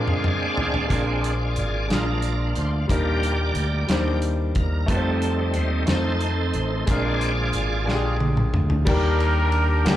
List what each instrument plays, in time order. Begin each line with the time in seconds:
Already playing: grand piano A#2 G#3 D4 F4 A#4, french horn section F3 G#3 A#3 D5, tonewheel organ G#3 C4 D4 G#4 D5 F5
0.08 mid tom
0.24 mid tom
0.57 floor tom
0.74 floor tom
0.88 fingered electric bass A#1, grand piano A#2 G#3 D4 F4 A#4, tonewheel organ G#3 C4 D4 F4 G#4 D5, kick, closed hi-hat
1.24 closed hi-hat
1.56 fingered electric bass G#1, tonewheel organ D5, closed hi-hat
1.88 fingered electric bass A#1, grand piano G#3 D4 F4 G#4, tonewheel organ D4 F4 A#4, snare, closed hi-hat
2.22 closed hi-hat
2.56 fingered electric bass D2, tonewheel organ C5, closed hi-hat
2.88 fingered electric bass D#2, grand piano A#2 G3 D4 D#4 A#4, tonewheel organ F3 G3 A#3 G4 A#4 D5, french horn section G3, kick, closed hi-hat
3.23 closed hi-hat
3.55 fingered electric bass D2, closed hi-hat
3.87 fingered electric bass D#2, grand piano G3 D4 D#4 C5, snare, closed hi-hat
4.22 closed hi-hat
4.55 fingered electric bass D#2, tonewheel organ A#4, kick, closed hi-hat
4.86 fingered electric bass F2, french horn section F3 A3 C4, tonewheel organ G3 A3 C4 D#4 A4, grand piano A3 D#4 F4 B4, kick, closed hi-hat
4.97 grand piano C5
5.22 closed hi-hat
5.54 fingered electric bass D#2, tonewheel organ C5, closed hi-hat
5.86 fingered electric bass F2, grand piano A3 D#4 F4 C5, tonewheel organ D#4 A4 C5, snare, closed hi-hat
6.21 closed hi-hat
6.54 fingered electric bass A1, closed hi-hat
6.86 fingered electric bass A#1, grand piano A#2 G#3 D4 F4 A#4, french horn section D3 G#3 A#3, tonewheel organ G#3 C4 D4 F4 G#4 D5, kick, closed hi-hat
7.21 closed hi-hat
7.53 fingered electric bass G#1, closed hi-hat
7.86 fingered electric bass A#1, grand piano G#3 D4 F4 G4, snare
7.95 grand piano G#4
8.20 high tom
8.37 mid tom
8.53 fingered electric bass D2, mid tom
8.70 floor tom
8.85 fingered electric bass D#2, grand piano D#3 G3 A#3 D4 G4 A#4, tonewheel organ G3 A#3 D4 F4, kick, crash
8.89 horn section D4 G4 A#4
8.94 tonewheel organ G4
9.20 ride
9.52 ride
9.84 fingered electric bass D2, grand piano F#3 A#3 D4 G4 A#4, snare, clap, ride
9.88 grand piano G3, horn section A#3 D4 G4